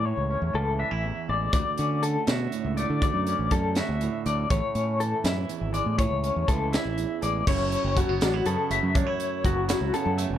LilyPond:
<<
  \new Staff \with { instrumentName = "Clean electric guitar" } { \time 6/8 \key fis \minor \tempo 4. = 81 cis''4 a'8 e''4 d''8 | d''4 a'8 e''4 d''8 | d''4 a'8 e''4 d''8 | cis''4 a'8 e''4 d''8 |
cis''4 a'8 e''4 d''8 | cis''4 fis'4 a'8 e''8 | cis''4 fis'4 a'8 e''8 | }
  \new Staff \with { instrumentName = "Clean electric guitar" } { \time 6/8 \key fis \minor << { r8 cis'4 d'16 e'8. gis8 | r8 cis'4 fis'4 a8 | r8 cis'4 fis'4 a8 | r8 cis'4 e'4 gis8 |
r8 cis'4 e'4 gis8 | e'4 a16 b16 d'16 e'16 b8 a8 | d'16 e'8. b8 e'8 b8 a8 | } \\ { a,4 e4 e,4 | d,4 d4 a,4 | d,4 d4 a,4 | a,4 e4 e,4 |
a,4 e4 e,4 | fis,4 fis4 cis4 | fis,4 fis4 cis4 | } >> }
  \new Staff \with { instrumentName = "Fingered electric bass" } { \clef bass \time 6/8 \key fis \minor a,16 cis,8 e,16 cis,8. a,,8 r16 a,,8 | d,16 r16 d4 b,8 r16 cis,8 d16~ | d16 fis,8 a,,16 fis,8. d,8 r16 d,8 | a,,16 r16 a,4 fis,8 r16 gis,,8 a,16~ |
a,16 cis,8 e,16 cis,8. a,,8 r16 a,,8 | fis,,8. fis,,8 fis,,16 a,,8 fis,16 r16 fis,,16 fis,16~ | fis,16 r8. fis,,8. cis,16 r16 fis,8 e,,16 | }
  \new DrumStaff \with { instrumentName = "Drums" } \drummode { \time 6/8 r4. r4. | <hh bd>8 hh8 hh8 <hh sn>8 hh8 hh8 | <hh bd>8 hh8 <hh bd>8 <hh sn>8 hh8 hh8 | <hh bd>8 hh8 hh8 <hh sn>8 hh8 hh8 |
<hh bd>8 hh8 <hh bd>8 <hh sn>8 hh8 hh8 | <cymc bd>8 hh8 <hh bd>8 <hh sn>8 hh8 hh8 | <hh bd>8 hh8 <hh bd>8 <hh sn>8 hh8 hh8 | }
>>